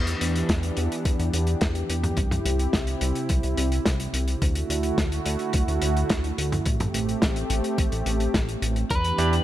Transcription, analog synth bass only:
0, 0, Header, 1, 2, 480
1, 0, Start_track
1, 0, Key_signature, 1, "minor"
1, 0, Tempo, 560748
1, 1863, Time_signature, 4, 2, 24, 8
1, 8079, End_track
2, 0, Start_track
2, 0, Title_t, "Analog synth bass"
2, 0, Program_c, 0, 38
2, 0, Note_on_c, 0, 40, 95
2, 130, Note_off_c, 0, 40, 0
2, 182, Note_on_c, 0, 40, 76
2, 371, Note_off_c, 0, 40, 0
2, 421, Note_on_c, 0, 40, 81
2, 611, Note_off_c, 0, 40, 0
2, 662, Note_on_c, 0, 40, 98
2, 757, Note_off_c, 0, 40, 0
2, 900, Note_on_c, 0, 40, 80
2, 996, Note_off_c, 0, 40, 0
2, 1023, Note_on_c, 0, 40, 75
2, 1117, Note_off_c, 0, 40, 0
2, 1142, Note_on_c, 0, 40, 98
2, 1331, Note_off_c, 0, 40, 0
2, 1380, Note_on_c, 0, 40, 100
2, 1570, Note_off_c, 0, 40, 0
2, 1622, Note_on_c, 0, 40, 81
2, 1811, Note_off_c, 0, 40, 0
2, 1861, Note_on_c, 0, 36, 96
2, 2050, Note_off_c, 0, 36, 0
2, 2101, Note_on_c, 0, 36, 81
2, 2291, Note_off_c, 0, 36, 0
2, 2342, Note_on_c, 0, 36, 81
2, 2531, Note_off_c, 0, 36, 0
2, 2581, Note_on_c, 0, 36, 92
2, 2676, Note_off_c, 0, 36, 0
2, 2823, Note_on_c, 0, 36, 83
2, 2917, Note_off_c, 0, 36, 0
2, 2943, Note_on_c, 0, 36, 80
2, 3037, Note_off_c, 0, 36, 0
2, 3062, Note_on_c, 0, 36, 103
2, 3251, Note_off_c, 0, 36, 0
2, 3303, Note_on_c, 0, 36, 97
2, 3492, Note_off_c, 0, 36, 0
2, 3539, Note_on_c, 0, 36, 78
2, 3730, Note_off_c, 0, 36, 0
2, 3782, Note_on_c, 0, 38, 100
2, 3971, Note_off_c, 0, 38, 0
2, 4021, Note_on_c, 0, 38, 83
2, 4210, Note_off_c, 0, 38, 0
2, 4262, Note_on_c, 0, 38, 86
2, 4451, Note_off_c, 0, 38, 0
2, 4499, Note_on_c, 0, 38, 95
2, 4595, Note_off_c, 0, 38, 0
2, 4742, Note_on_c, 0, 38, 88
2, 4836, Note_off_c, 0, 38, 0
2, 4861, Note_on_c, 0, 38, 78
2, 4956, Note_off_c, 0, 38, 0
2, 4983, Note_on_c, 0, 38, 100
2, 5171, Note_off_c, 0, 38, 0
2, 5222, Note_on_c, 0, 38, 103
2, 5411, Note_off_c, 0, 38, 0
2, 5461, Note_on_c, 0, 38, 79
2, 5651, Note_off_c, 0, 38, 0
2, 5702, Note_on_c, 0, 33, 101
2, 5891, Note_off_c, 0, 33, 0
2, 5941, Note_on_c, 0, 33, 80
2, 6131, Note_off_c, 0, 33, 0
2, 6182, Note_on_c, 0, 33, 84
2, 6371, Note_off_c, 0, 33, 0
2, 6421, Note_on_c, 0, 33, 97
2, 6516, Note_off_c, 0, 33, 0
2, 6662, Note_on_c, 0, 33, 87
2, 6757, Note_off_c, 0, 33, 0
2, 6780, Note_on_c, 0, 33, 81
2, 6876, Note_off_c, 0, 33, 0
2, 6901, Note_on_c, 0, 33, 76
2, 7090, Note_off_c, 0, 33, 0
2, 7142, Note_on_c, 0, 33, 84
2, 7331, Note_off_c, 0, 33, 0
2, 7380, Note_on_c, 0, 33, 97
2, 7570, Note_off_c, 0, 33, 0
2, 7623, Note_on_c, 0, 40, 96
2, 7812, Note_off_c, 0, 40, 0
2, 7861, Note_on_c, 0, 40, 82
2, 8051, Note_off_c, 0, 40, 0
2, 8079, End_track
0, 0, End_of_file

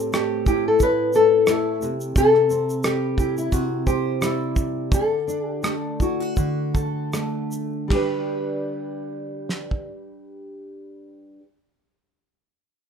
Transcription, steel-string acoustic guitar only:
0, 0, Header, 1, 2, 480
1, 0, Start_track
1, 0, Key_signature, 1, "major"
1, 0, Tempo, 679502
1, 1517, Time_signature, 4, 2, 24, 8
1, 2966, Tempo, 719424
1, 4406, Tempo, 769231
1, 5366, Tempo, 794702
1, 8385, End_track
2, 0, Start_track
2, 0, Title_t, "Steel-string acoustic guitar"
2, 0, Program_c, 0, 25
2, 0, Note_on_c, 0, 45, 71
2, 0, Note_on_c, 0, 60, 46
2, 88, Note_on_c, 0, 57, 57
2, 332, Note_on_c, 0, 64, 52
2, 562, Note_off_c, 0, 45, 0
2, 569, Note_on_c, 0, 45, 69
2, 809, Note_on_c, 0, 69, 54
2, 1038, Note_off_c, 0, 57, 0
2, 1047, Note_on_c, 0, 57, 55
2, 1281, Note_off_c, 0, 45, 0
2, 1287, Note_on_c, 0, 48, 65
2, 1334, Note_off_c, 0, 57, 0
2, 1334, Note_off_c, 0, 69, 0
2, 1515, Note_off_c, 0, 48, 0
2, 1523, Note_on_c, 0, 48, 71
2, 1765, Note_off_c, 0, 60, 0
2, 1767, Note_on_c, 0, 60, 47
2, 2007, Note_on_c, 0, 55, 54
2, 2242, Note_off_c, 0, 64, 0
2, 2245, Note_on_c, 0, 64, 53
2, 2479, Note_off_c, 0, 48, 0
2, 2487, Note_on_c, 0, 48, 65
2, 2730, Note_on_c, 0, 72, 54
2, 2965, Note_off_c, 0, 55, 0
2, 2973, Note_on_c, 0, 55, 56
2, 3445, Note_on_c, 0, 50, 66
2, 3491, Note_off_c, 0, 55, 0
2, 3492, Note_off_c, 0, 64, 0
2, 3492, Note_off_c, 0, 72, 0
2, 3493, Note_off_c, 0, 48, 0
2, 3494, Note_off_c, 0, 60, 0
2, 3683, Note_on_c, 0, 62, 45
2, 3920, Note_on_c, 0, 57, 52
2, 4166, Note_on_c, 0, 64, 50
2, 4303, Note_off_c, 0, 64, 0
2, 4303, Note_on_c, 0, 66, 41
2, 4410, Note_off_c, 0, 50, 0
2, 4413, Note_on_c, 0, 50, 64
2, 4645, Note_on_c, 0, 69, 51
2, 4881, Note_off_c, 0, 57, 0
2, 4888, Note_on_c, 0, 57, 53
2, 5353, Note_off_c, 0, 57, 0
2, 5356, Note_on_c, 0, 55, 63
2, 5369, Note_off_c, 0, 62, 0
2, 5372, Note_on_c, 0, 62, 65
2, 5384, Note_off_c, 0, 66, 0
2, 5386, Note_on_c, 0, 67, 65
2, 5394, Note_off_c, 0, 69, 0
2, 5396, Note_on_c, 0, 71, 66
2, 6557, Note_off_c, 0, 50, 0
2, 7470, Note_off_c, 0, 55, 0
2, 7486, Note_off_c, 0, 62, 0
2, 7500, Note_off_c, 0, 67, 0
2, 7510, Note_off_c, 0, 71, 0
2, 8385, End_track
0, 0, End_of_file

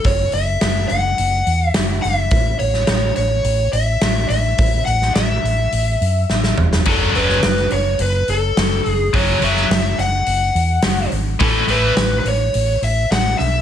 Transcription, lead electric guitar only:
0, 0, Header, 1, 2, 480
1, 0, Start_track
1, 0, Tempo, 567644
1, 40, Time_signature, 4, 2, 24, 8
1, 11515, End_track
2, 0, Start_track
2, 0, Title_t, "Lead electric guitar"
2, 0, Program_c, 0, 29
2, 50, Note_on_c, 0, 73, 84
2, 283, Note_on_c, 0, 76, 88
2, 292, Note_off_c, 0, 73, 0
2, 744, Note_off_c, 0, 76, 0
2, 747, Note_on_c, 0, 78, 98
2, 1432, Note_off_c, 0, 78, 0
2, 1432, Note_on_c, 0, 76, 98
2, 1709, Note_off_c, 0, 76, 0
2, 1709, Note_on_c, 0, 76, 107
2, 2189, Note_off_c, 0, 76, 0
2, 2192, Note_on_c, 0, 73, 86
2, 2664, Note_off_c, 0, 73, 0
2, 2674, Note_on_c, 0, 73, 88
2, 3152, Note_off_c, 0, 73, 0
2, 3156, Note_on_c, 0, 76, 88
2, 3620, Note_off_c, 0, 76, 0
2, 3630, Note_on_c, 0, 76, 93
2, 4082, Note_off_c, 0, 76, 0
2, 4105, Note_on_c, 0, 78, 83
2, 4353, Note_off_c, 0, 78, 0
2, 4357, Note_on_c, 0, 76, 73
2, 5527, Note_off_c, 0, 76, 0
2, 5829, Note_on_c, 0, 69, 74
2, 6055, Note_on_c, 0, 71, 75
2, 6063, Note_off_c, 0, 69, 0
2, 6527, Note_off_c, 0, 71, 0
2, 6530, Note_on_c, 0, 73, 73
2, 6774, Note_off_c, 0, 73, 0
2, 6777, Note_on_c, 0, 71, 85
2, 6994, Note_off_c, 0, 71, 0
2, 7014, Note_on_c, 0, 69, 80
2, 7513, Note_off_c, 0, 69, 0
2, 7513, Note_on_c, 0, 68, 80
2, 7738, Note_on_c, 0, 73, 86
2, 7751, Note_off_c, 0, 68, 0
2, 7978, Note_off_c, 0, 73, 0
2, 7983, Note_on_c, 0, 76, 86
2, 8454, Note_off_c, 0, 76, 0
2, 8457, Note_on_c, 0, 78, 88
2, 9377, Note_off_c, 0, 78, 0
2, 9657, Note_on_c, 0, 69, 78
2, 9874, Note_off_c, 0, 69, 0
2, 9895, Note_on_c, 0, 71, 84
2, 10303, Note_off_c, 0, 71, 0
2, 10313, Note_on_c, 0, 71, 70
2, 10368, Note_off_c, 0, 71, 0
2, 10383, Note_on_c, 0, 73, 85
2, 10820, Note_off_c, 0, 73, 0
2, 10859, Note_on_c, 0, 76, 85
2, 11089, Note_off_c, 0, 76, 0
2, 11093, Note_on_c, 0, 78, 97
2, 11311, Note_off_c, 0, 78, 0
2, 11320, Note_on_c, 0, 76, 97
2, 11515, Note_off_c, 0, 76, 0
2, 11515, End_track
0, 0, End_of_file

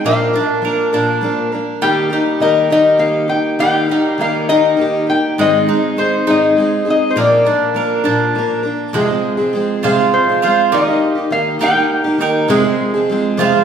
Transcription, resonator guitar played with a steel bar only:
0, 0, Header, 1, 2, 480
1, 0, Start_track
1, 0, Key_signature, -3, "major"
1, 0, Tempo, 592885
1, 49, Time_signature, 6, 3, 24, 8
1, 11044, End_track
2, 0, Start_track
2, 0, Title_t, "Resonator guitar played with a steel bar"
2, 0, Program_c, 0, 25
2, 51, Note_on_c, 0, 77, 68
2, 558, Note_off_c, 0, 77, 0
2, 1474, Note_on_c, 0, 79, 91
2, 1955, Note_on_c, 0, 75, 77
2, 1976, Note_off_c, 0, 79, 0
2, 2195, Note_off_c, 0, 75, 0
2, 2205, Note_on_c, 0, 75, 85
2, 2424, Note_on_c, 0, 77, 78
2, 2454, Note_off_c, 0, 75, 0
2, 2664, Note_off_c, 0, 77, 0
2, 2667, Note_on_c, 0, 79, 85
2, 2905, Note_off_c, 0, 79, 0
2, 2915, Note_on_c, 0, 79, 85
2, 3303, Note_off_c, 0, 79, 0
2, 3303, Note_on_c, 0, 77, 85
2, 3408, Note_off_c, 0, 77, 0
2, 3411, Note_on_c, 0, 77, 84
2, 3635, Note_on_c, 0, 75, 86
2, 3657, Note_off_c, 0, 77, 0
2, 4126, Note_on_c, 0, 79, 89
2, 4136, Note_off_c, 0, 75, 0
2, 4350, Note_off_c, 0, 79, 0
2, 4379, Note_on_c, 0, 75, 82
2, 4821, Note_off_c, 0, 75, 0
2, 4849, Note_on_c, 0, 72, 70
2, 5096, Note_off_c, 0, 72, 0
2, 5104, Note_on_c, 0, 75, 78
2, 5579, Note_off_c, 0, 75, 0
2, 5589, Note_on_c, 0, 75, 75
2, 5752, Note_on_c, 0, 72, 53
2, 5768, Note_off_c, 0, 75, 0
2, 5808, Note_off_c, 0, 72, 0
2, 5828, Note_on_c, 0, 74, 69
2, 6986, Note_off_c, 0, 74, 0
2, 8206, Note_on_c, 0, 72, 66
2, 8442, Note_off_c, 0, 72, 0
2, 8452, Note_on_c, 0, 72, 70
2, 8698, Note_off_c, 0, 72, 0
2, 8698, Note_on_c, 0, 75, 79
2, 9163, Note_off_c, 0, 75, 0
2, 9166, Note_on_c, 0, 77, 87
2, 9415, Note_off_c, 0, 77, 0
2, 9418, Note_on_c, 0, 79, 89
2, 9922, Note_off_c, 0, 79, 0
2, 11044, End_track
0, 0, End_of_file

